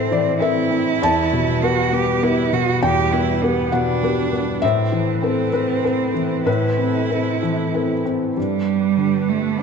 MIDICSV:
0, 0, Header, 1, 4, 480
1, 0, Start_track
1, 0, Key_signature, 0, "minor"
1, 0, Tempo, 601805
1, 818, Time_signature, 3, 2, 24, 8
1, 4171, Tempo, 628272
1, 6571, Tempo, 610376
1, 7559, End_track
2, 0, Start_track
2, 0, Title_t, "Analog synth pad"
2, 0, Program_c, 0, 89
2, 0, Note_on_c, 0, 60, 60
2, 0, Note_on_c, 0, 64, 56
2, 0, Note_on_c, 0, 69, 59
2, 787, Note_off_c, 0, 69, 0
2, 805, Note_on_c, 0, 59, 61
2, 811, Note_on_c, 0, 71, 64
2, 817, Note_on_c, 0, 55, 61
2, 819, Note_off_c, 0, 60, 0
2, 821, Note_off_c, 0, 64, 0
2, 3652, Note_off_c, 0, 71, 0
2, 3681, Note_off_c, 0, 59, 0
2, 3687, Note_off_c, 0, 55, 0
2, 3695, Note_on_c, 0, 60, 64
2, 3695, Note_on_c, 0, 69, 61
2, 3699, Note_on_c, 0, 71, 59
2, 6543, Note_off_c, 0, 71, 0
2, 6555, Note_on_c, 0, 62, 50
2, 6559, Note_on_c, 0, 67, 52
2, 6560, Note_on_c, 0, 71, 54
2, 6572, Note_off_c, 0, 60, 0
2, 6572, Note_off_c, 0, 69, 0
2, 7559, Note_off_c, 0, 62, 0
2, 7559, Note_off_c, 0, 67, 0
2, 7559, Note_off_c, 0, 71, 0
2, 7559, End_track
3, 0, Start_track
3, 0, Title_t, "Cello"
3, 0, Program_c, 1, 42
3, 0, Note_on_c, 1, 60, 71
3, 305, Note_off_c, 1, 60, 0
3, 327, Note_on_c, 1, 64, 76
3, 1302, Note_on_c, 1, 66, 71
3, 1314, Note_off_c, 1, 64, 0
3, 1540, Note_on_c, 1, 67, 69
3, 1552, Note_off_c, 1, 66, 0
3, 1779, Note_on_c, 1, 64, 70
3, 1791, Note_off_c, 1, 67, 0
3, 2020, Note_on_c, 1, 66, 68
3, 2032, Note_off_c, 1, 64, 0
3, 2254, Note_off_c, 1, 66, 0
3, 2263, Note_on_c, 1, 67, 75
3, 2495, Note_on_c, 1, 64, 67
3, 2507, Note_off_c, 1, 67, 0
3, 2736, Note_on_c, 1, 59, 61
3, 2748, Note_off_c, 1, 64, 0
3, 2977, Note_on_c, 1, 62, 72
3, 2989, Note_off_c, 1, 59, 0
3, 3696, Note_on_c, 1, 60, 56
3, 3708, Note_off_c, 1, 62, 0
3, 4162, Note_off_c, 1, 60, 0
3, 4167, Note_on_c, 1, 60, 65
3, 5099, Note_off_c, 1, 60, 0
3, 5123, Note_on_c, 1, 64, 58
3, 6310, Note_off_c, 1, 64, 0
3, 6572, Note_on_c, 1, 55, 61
3, 7289, Note_on_c, 1, 57, 59
3, 7301, Note_off_c, 1, 55, 0
3, 7530, Note_on_c, 1, 62, 66
3, 7542, Note_off_c, 1, 57, 0
3, 7559, Note_off_c, 1, 62, 0
3, 7559, End_track
4, 0, Start_track
4, 0, Title_t, "Felt piano"
4, 0, Program_c, 2, 0
4, 0, Control_c, 2, 64, 127
4, 0, Note_on_c, 2, 45, 57
4, 0, Note_on_c, 2, 52, 43
4, 0, Note_on_c, 2, 60, 50
4, 0, Note_on_c, 2, 69, 48
4, 0, Note_on_c, 2, 72, 52
4, 0, Note_on_c, 2, 76, 88
4, 91, Note_off_c, 2, 52, 0
4, 91, Note_on_c, 2, 52, 45
4, 98, Note_on_c, 2, 74, 71
4, 315, Note_off_c, 2, 74, 0
4, 321, Note_off_c, 2, 60, 0
4, 321, Note_on_c, 2, 60, 47
4, 327, Note_off_c, 2, 69, 0
4, 327, Note_on_c, 2, 69, 47
4, 332, Note_on_c, 2, 71, 51
4, 335, Note_off_c, 2, 76, 0
4, 335, Note_on_c, 2, 76, 70
4, 473, Note_off_c, 2, 52, 0
4, 543, Note_off_c, 2, 60, 0
4, 547, Note_off_c, 2, 69, 0
4, 550, Note_off_c, 2, 71, 0
4, 561, Note_on_c, 2, 60, 46
4, 782, Note_off_c, 2, 45, 0
4, 790, Note_off_c, 2, 76, 0
4, 813, Note_off_c, 2, 60, 0
4, 815, Note_on_c, 2, 40, 58
4, 823, Note_on_c, 2, 81, 105
4, 835, Control_c, 2, 64, 0
4, 839, Note_off_c, 2, 72, 0
4, 955, Control_c, 2, 64, 127
4, 1063, Note_on_c, 2, 47, 48
4, 1300, Note_on_c, 2, 55, 47
4, 1301, Note_on_c, 2, 59, 49
4, 1307, Note_on_c, 2, 71, 55
4, 1442, Note_off_c, 2, 47, 0
4, 1512, Note_off_c, 2, 55, 0
4, 1513, Note_off_c, 2, 59, 0
4, 1516, Note_off_c, 2, 71, 0
4, 1536, Note_on_c, 2, 59, 50
4, 1766, Note_off_c, 2, 59, 0
4, 1778, Note_on_c, 2, 59, 48
4, 1780, Note_on_c, 2, 67, 46
4, 1781, Note_on_c, 2, 71, 52
4, 1990, Note_off_c, 2, 59, 0
4, 1991, Note_off_c, 2, 67, 0
4, 1992, Note_off_c, 2, 71, 0
4, 2016, Note_on_c, 2, 47, 49
4, 2216, Note_off_c, 2, 40, 0
4, 2220, Note_off_c, 2, 81, 0
4, 2254, Note_on_c, 2, 40, 60
4, 2254, Note_on_c, 2, 79, 81
4, 2265, Control_c, 2, 64, 0
4, 2396, Note_off_c, 2, 47, 0
4, 2408, Control_c, 2, 64, 127
4, 2497, Note_on_c, 2, 59, 45
4, 2724, Note_off_c, 2, 59, 0
4, 2736, Note_on_c, 2, 59, 49
4, 2738, Note_on_c, 2, 67, 46
4, 2744, Note_on_c, 2, 71, 53
4, 2936, Note_off_c, 2, 79, 0
4, 2947, Note_off_c, 2, 59, 0
4, 2949, Note_off_c, 2, 67, 0
4, 2952, Note_off_c, 2, 71, 0
4, 2969, Note_on_c, 2, 78, 73
4, 2974, Note_on_c, 2, 47, 46
4, 3191, Note_off_c, 2, 78, 0
4, 3216, Note_on_c, 2, 59, 44
4, 3222, Note_on_c, 2, 67, 46
4, 3223, Note_on_c, 2, 71, 49
4, 3354, Note_off_c, 2, 47, 0
4, 3428, Note_off_c, 2, 59, 0
4, 3431, Note_off_c, 2, 67, 0
4, 3432, Note_off_c, 2, 71, 0
4, 3452, Note_on_c, 2, 59, 46
4, 3657, Note_off_c, 2, 40, 0
4, 3683, Note_on_c, 2, 76, 89
4, 3690, Note_off_c, 2, 59, 0
4, 3693, Note_on_c, 2, 45, 55
4, 3703, Control_c, 2, 64, 0
4, 3850, Control_c, 2, 64, 127
4, 3926, Note_on_c, 2, 52, 42
4, 4167, Note_on_c, 2, 60, 45
4, 4171, Note_on_c, 2, 69, 45
4, 4173, Note_on_c, 2, 71, 47
4, 4308, Note_off_c, 2, 52, 0
4, 4370, Note_off_c, 2, 76, 0
4, 4378, Note_off_c, 2, 60, 0
4, 4380, Note_off_c, 2, 69, 0
4, 4381, Note_off_c, 2, 71, 0
4, 4401, Note_on_c, 2, 71, 66
4, 4406, Note_on_c, 2, 60, 42
4, 4630, Note_off_c, 2, 60, 0
4, 4633, Note_off_c, 2, 71, 0
4, 4641, Note_on_c, 2, 60, 38
4, 4642, Note_on_c, 2, 69, 39
4, 4645, Note_on_c, 2, 71, 42
4, 4855, Note_off_c, 2, 60, 0
4, 4856, Note_off_c, 2, 69, 0
4, 4857, Note_off_c, 2, 71, 0
4, 4868, Note_on_c, 2, 52, 38
4, 5092, Note_off_c, 2, 45, 0
4, 5110, Note_on_c, 2, 45, 49
4, 5115, Note_on_c, 2, 71, 76
4, 5133, Control_c, 2, 64, 0
4, 5261, Note_off_c, 2, 52, 0
4, 5266, Control_c, 2, 64, 127
4, 5353, Note_on_c, 2, 60, 38
4, 5575, Note_off_c, 2, 71, 0
4, 5591, Note_off_c, 2, 60, 0
4, 5602, Note_on_c, 2, 60, 36
4, 5604, Note_on_c, 2, 69, 37
4, 5607, Note_on_c, 2, 71, 43
4, 5824, Note_off_c, 2, 60, 0
4, 5825, Note_off_c, 2, 69, 0
4, 5826, Note_off_c, 2, 71, 0
4, 5851, Note_on_c, 2, 52, 38
4, 6091, Note_on_c, 2, 60, 37
4, 6093, Note_on_c, 2, 69, 35
4, 6096, Note_on_c, 2, 71, 42
4, 6236, Note_off_c, 2, 52, 0
4, 6307, Note_off_c, 2, 60, 0
4, 6309, Note_off_c, 2, 69, 0
4, 6310, Note_off_c, 2, 71, 0
4, 6329, Note_on_c, 2, 60, 36
4, 6533, Note_off_c, 2, 45, 0
4, 6567, Note_off_c, 2, 60, 0
4, 6571, Note_on_c, 2, 43, 41
4, 6582, Control_c, 2, 64, 0
4, 6729, Control_c, 2, 64, 127
4, 7042, Note_on_c, 2, 50, 35
4, 7559, Note_off_c, 2, 43, 0
4, 7559, Note_off_c, 2, 50, 0
4, 7559, End_track
0, 0, End_of_file